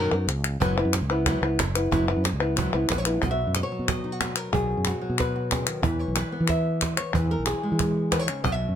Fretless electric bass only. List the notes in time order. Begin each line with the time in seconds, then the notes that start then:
0.12 F#2
0.27 C#2
0.60 F#1
0.85 F#2
1.01 C#2
1.42 C#2
1.59 F#1
1.91 F#1
2.17 F#2
2.33 C#2
2.74 C#2
2.90 A#1
3.23 B1
3.47 F#2
3.79 B2
4.53 B1
4.77 F#2
5.10 B2
5.83 E2
6.08 B1
6.40 E3
7.14 E2
7.39 B1
7.72 E3
8.44 B1
8.69 F#2